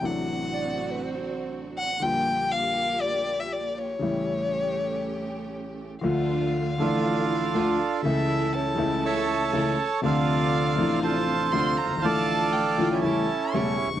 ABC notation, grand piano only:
X:1
M:4/4
L:1/16
Q:1/4=120
K:Aphr
V:1 name="Grand piano" clef=bass
[A,,,A,,C,^F,A,D]16 | [B,,,B,,D,G,B,F]16 | [A,,,A,,^C,G,A,E]16 | [K:Dm] [D,,D,F,A,F]6 [A,,,A,,D,F,A,F]6 [D,,D,F,A,F]2 z2 |
[^C,,^C,E,A,E]6 [C,,C,E,A,E]6 [C,,C,E,A,E]2 z2 | [D,,C,D,F,A,D]6 [A,,,A,,C,F,A,D]6 [D,,C,D,F,A,D]2 z/2 ^F,,,/2 G,,,/2 ^G,,,/2 | [A,,,A,,D,F,A,F]6 [A,,,A,,D,F,A,F]2 [A,,,A,,^C,G,A,E]2 z2 [E,,,E,,C,G,A,E]2 z/2 ^F,,,/2 G,,,/2 ^G,,,/2 |]